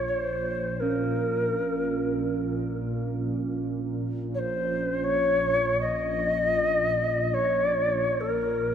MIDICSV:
0, 0, Header, 1, 4, 480
1, 0, Start_track
1, 0, Key_signature, -5, "minor"
1, 0, Tempo, 500000
1, 8396, End_track
2, 0, Start_track
2, 0, Title_t, "Native American-style wooden flute"
2, 0, Program_c, 0, 77
2, 77, Note_on_c, 0, 72, 72
2, 763, Note_on_c, 0, 70, 67
2, 777, Note_off_c, 0, 72, 0
2, 2338, Note_off_c, 0, 70, 0
2, 4168, Note_on_c, 0, 73, 65
2, 4209, Note_on_c, 0, 72, 70
2, 4219, Note_off_c, 0, 73, 0
2, 4833, Note_on_c, 0, 73, 77
2, 4847, Note_off_c, 0, 72, 0
2, 5565, Note_off_c, 0, 73, 0
2, 5571, Note_on_c, 0, 75, 92
2, 7042, Note_on_c, 0, 73, 76
2, 7057, Note_off_c, 0, 75, 0
2, 7873, Note_on_c, 0, 70, 63
2, 7887, Note_off_c, 0, 73, 0
2, 8396, Note_off_c, 0, 70, 0
2, 8396, End_track
3, 0, Start_track
3, 0, Title_t, "Singing bowl"
3, 0, Program_c, 1, 14
3, 788, Note_on_c, 1, 61, 51
3, 8188, Note_off_c, 1, 61, 0
3, 8396, End_track
4, 0, Start_track
4, 0, Title_t, "Ambient pad"
4, 0, Program_c, 2, 92
4, 0, Note_on_c, 2, 34, 66
4, 0, Note_on_c, 2, 46, 63
4, 8396, Note_off_c, 2, 34, 0
4, 8396, Note_off_c, 2, 46, 0
4, 8396, End_track
0, 0, End_of_file